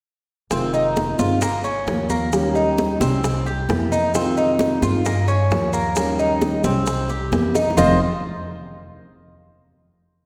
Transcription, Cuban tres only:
0.51 0.73 C4 medium
0.74 1.18 D#4 medium
1.19 1.41 F4 medium
1.41 1.64 A#3 medium
1.64 2.08 C#4 medium
2.10 2.54 A#3 medium
2.55 2.99 D#4 medium
3.01 3.45 C4 medium
3.46 3.90 G4 medium
3.92 4.14 D#4 medium
4.15 4.37 C4 medium
4.37 4.81 D#4 medium
4.83 5.05 F4 medium
5.05 5.27 A#3 medium
5.28 5.72 C#4 medium
5.73 6.17 A#3 medium
6.19 6.63 D#4 medium
6.64 7.08 C4 medium
7.09 7.53 G4 medium
7.55 7.77 D#4 medium
7.77 7.98 F4 medium
7.77 7.99 C5 medium
7.77 7.99 D#5 loud

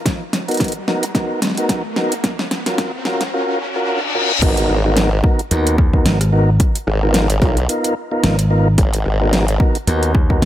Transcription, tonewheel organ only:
0.48 0.73 B3 medium
0.48 0.73 D#4 medium
0.48 0.73 F#4 medium
0.48 0.73 A#4 medium
0.88 1.05 B3 medium
0.88 1.05 D#4 medium
0.88 1.05 F#4 medium
0.88 1.05 A#4 medium
1.15 1.40 B3 medium
1.15 1.40 D#4 medium
1.15 1.40 F#4 medium
1.15 1.40 A#4 medium
1.58 1.83 B3 medium
1.58 1.83 D#4 medium
1.58 1.83 F#4 medium
1.58 1.83 A#4 medium
1.97 2.14 B3 medium
1.97 2.14 D#4 medium
1.97 2.14 F#4 medium
1.97 2.14 A#4 loud
2.67 2.92 C#4 medium
2.67 2.92 F4 medium
2.67 2.92 F#4 medium
2.67 2.92 A#4 medium
3.06 3.23 C#4 medium
3.06 3.23 F4 medium
3.06 3.23 F#4 medium
3.06 3.23 A#4 medium
3.34 3.59 C#4 medium
3.34 3.59 F4 medium
3.34 3.59 F#4 medium
3.34 3.59 A#4 medium
3.76 4.01 C#4 medium
3.76 4.01 F4 medium
3.76 4.01 F#4 medium
3.76 4.01 A#4 medium
4.15 4.32 C#4 medium
4.15 4.32 F4 medium
4.15 4.32 F#4 medium
4.15 4.32 A#4 loud
4.42 4.78 B3 loud
4.42 4.78 D#4 medium
4.42 4.78 F#4 medium
4.42 4.78 A#4 loud
4.84 5.10 B3 medium
4.84 5.10 D#4 medium
4.84 5.10 F#4 medium
4.84 5.10 A#4 medium
5.24 5.41 B3 medium
5.24 5.41 D#4 medium
5.24 5.41 F#4 medium
5.24 5.41 A#4 medium
5.51 5.77 B3 medium
5.51 5.77 D#4 medium
5.51 5.77 F#4 medium
5.51 5.77 A#4 medium
5.93 6.19 B3 medium
5.93 6.19 D#4 medium
5.93 6.19 F#4 medium
5.93 6.19 A#4 medium
6.32 6.50 B3 medium
6.32 6.50 D#4 medium
6.32 6.50 F#4 medium
6.32 6.50 A#4 loud
7.03 7.28 B3 medium
7.03 7.28 D#4 medium
7.03 7.28 F4 medium
7.03 7.28 A#4 medium
7.42 7.59 B3 medium
7.42 7.59 D#4 medium
7.42 7.59 F4 medium
7.42 7.59 A#4 medium
7.69 7.95 B3 medium
7.69 7.95 D#4 medium
7.69 7.95 F4 medium
7.69 7.95 A#4 medium
8.12 8.37 B3 medium
8.12 8.37 D#4 medium
8.12 8.37 F4 medium
8.12 8.37 A#4 medium
8.51 8.68 B3 medium
8.51 8.68 D#4 medium
8.51 8.68 F4 medium
8.51 8.68 A#4 loud
9.21 9.46 B3 medium
9.21 9.46 D#4 medium
9.21 9.46 F#4 medium
9.21 9.46 A#4 medium
9.60 9.77 B3 medium
9.60 9.77 D#4 medium
9.60 9.77 F#4 medium
9.60 9.77 A#4 loud
9.87 10.13 B3 medium
9.87 10.13 D#4 medium
9.87 10.13 F#4 medium
9.87 10.13 A#4 medium
10.30 10.45 B3 medium
10.30 10.45 D#4 medium
10.30 10.45 F#4 medium
10.30 10.45 A#4 medium

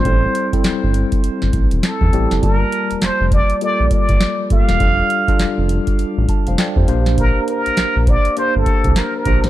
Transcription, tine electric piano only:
0.05 0.35 G3 medium
0.05 0.35 C4 medium
0.05 0.35 E4 medium
0.05 0.35 A4 medium
0.53 1.30 G3 medium
0.53 1.30 C4 medium
0.53 1.30 E4 medium
0.53 1.30 A4 medium
2.13 2.35 G3 medium
2.13 2.35 C4 medium
2.13 2.35 E4 medium
2.13 2.35 G4 medium
2.42 3.24 G3 medium
2.42 3.24 A#3 medium
2.42 3.24 F4 medium
2.42 3.24 A5 medium
3.61 4.21 G3 medium
3.61 4.21 A#3 medium
3.61 4.21 F4 medium
3.61 4.21 A4 medium
4.50 4.72 G3 medium
4.50 4.73 A#3 medium
4.50 4.73 F4 medium
4.50 4.73 A4 medium
4.80 5.10 G3 medium
4.80 5.10 D4 medium
4.80 5.10 F4 medium
4.80 5.10 A4 medium
5.28 6.05 G3 medium
5.28 6.05 D4 medium
5.28 6.05 F4 medium
5.28 6.06 A4 medium
6.29 6.57 A5 medium
6.48 6.58 C5 medium
6.48 6.58 F5 medium
6.59 6.76 A4 medium
6.59 6.76 D5 medium
6.59 6.86 G5 medium
6.77 6.87 G4 medium
6.77 6.88 C5 medium
6.88 7.84 A#3 medium
6.88 7.84 D4 medium
6.88 7.85 G4 medium
6.88 7.85 C5 loud
6.88 7.16 F5 medium
8.37 8.96 A#3 medium
8.37 8.96 D4 medium
8.37 8.96 G4 medium
8.37 8.97 C5 medium
9.26 9.48 A#3 medium
9.26 9.48 D4 medium
9.26 9.48 G4 medium
9.26 9.48 C5 medium

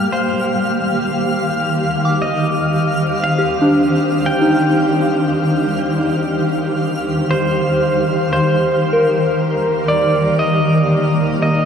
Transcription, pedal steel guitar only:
0.12 2.21 C5 medium
2.22 3.28 D#5 medium
3.24 4.30 F5 medium
4.26 7.28 G5 loud
7.31 8.32 C5 medium
8.33 9.88 C5 medium
9.88 10.39 D5 medium
10.39 11.41 D#5 medium
11.42 11.65 D#5 medium

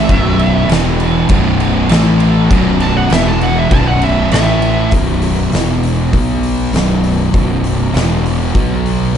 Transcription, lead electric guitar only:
0.00 0.67 E5 medium
2.82 2.96 A5 loud
2.97 3.11 F#5 loud
3.13 3.27 E5 medium
3.27 3.41 A5 loud
3.43 3.57 F#5 loud
3.58 3.72 E5 medium
3.72 3.86 A5 loud
3.88 4.02 F#5 medium
4.04 4.32 E5 medium
4.33 4.91 E5 medium

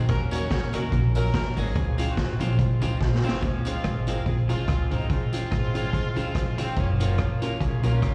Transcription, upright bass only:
0.09 0.44 D#2 loud
0.51 0.70 C#2 medium
0.74 0.90 C2 medium
0.92 1.28 A#1 loud
1.34 1.53 D#2 loud
1.57 1.73 G#1 medium
1.76 2.11 C#2 loud
2.18 2.37 G#1 medium
2.40 2.59 A#1 loud
2.59 2.79 C2 loud
2.83 2.98 C#2 loud
3.01 3.24 A#1 loud
3.24 3.40 G#1 medium
3.43 3.78 C#2 loud
3.85 4.20 G#1 medium
4.26 4.46 A#1 medium
4.49 4.65 C2 medium
4.68 4.93 C#2 medium
4.91 5.07 G#1 medium
5.10 5.45 C#2 medium
5.52 5.87 G#1 medium
5.93 6.13 C2 medium
6.16 6.35 C#2 medium
6.35 6.59 F2 loud
6.59 6.79 C#2 medium
6.77 7.12 F#1 loud
7.19 7.54 C#2 medium
7.61 7.84 C2 loud
7.84 8.00 A#1 medium
8.03 8.14 D#2 loud

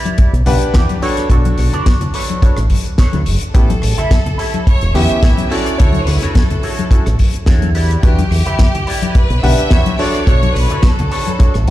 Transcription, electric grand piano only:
0.46 0.99 D4 loud
0.46 0.99 G4 medium
0.46 1.00 B4 loud
0.46 0.99 F#5 medium
1.02 1.27 D4 loud
1.02 1.27 F#4 medium
1.02 1.27 A4 medium
1.02 1.28 C#5 loud
1.30 2.39 D4 loud
1.30 2.39 F#4 medium
1.30 2.40 A4 medium
1.30 2.40 C#6 loud
2.42 2.56 D4 medium
2.42 2.57 F#4 medium
2.42 2.57 A4 medium
2.42 2.57 C#5 medium
3.54 3.69 B3 medium
3.54 3.69 C#4 medium
3.54 3.69 E4 medium
3.54 3.69 G4 medium
4.94 5.48 B3 loud
4.94 5.48 C#4 medium
4.94 5.48 E4 medium
4.94 5.48 G4 loud
5.50 5.76 C#4 medium
5.50 5.76 E4 medium
5.50 5.76 F#4 medium
5.50 5.76 A4 loud
5.78 6.88 E4 medium
5.78 6.88 F#4 medium
5.78 6.89 A4 loud
5.78 6.88 C#5 loud
6.91 7.05 C#4 medium
6.91 7.05 E4 medium
6.91 7.05 F#4 medium
6.91 7.06 A4 medium
8.03 8.17 D4 medium
8.03 8.17 F#4 medium
8.03 8.18 G4 medium
8.03 8.18 B4 medium
9.43 9.96 D4 loud
9.43 9.96 G4 medium
9.43 9.97 B4 loud
9.43 9.96 F#5 medium
9.99 10.24 D4 medium
9.99 10.24 F#4 medium
9.99 10.24 A4 medium
9.99 10.25 C#5 loud
10.26 11.36 D4 medium
10.26 11.36 F#4 medium
10.26 11.37 A4 medium
10.26 11.37 C#5 loud
11.39 11.54 D4 medium
11.39 11.54 F#4 medium
11.39 11.54 A4 medium
11.39 11.54 C#5 medium

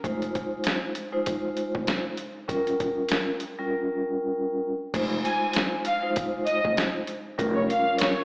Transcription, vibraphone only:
0.05 0.90 G#3 loud
0.05 0.90 D#4 medium
0.05 0.90 F4 medium
0.05 0.90 C5 loud
1.12 2.10 G#3 medium
1.12 2.11 D#4 medium
1.12 2.11 F4 medium
1.12 2.11 C5 loud
2.48 3.34 G3 medium
2.48 3.34 C#4 medium
2.48 3.34 F4 medium
2.48 3.34 A#4 loud
3.59 4.70 G3 loud
3.59 4.70 C#4 medium
3.59 4.70 F4 medium
3.59 4.70 A#4 loud
4.95 5.80 G#3 loud
4.95 5.80 D#4 medium
4.95 5.80 F4 medium
4.95 5.80 C5 loud
6.02 7.00 G#3 medium
6.02 7.00 D#4 medium
6.02 7.00 F4 medium
6.02 7.01 C5 loud
7.38 8.24 G3 loud
7.38 8.24 C#4 medium
7.38 8.24 F4 loud
7.38 8.24 A#4 loud

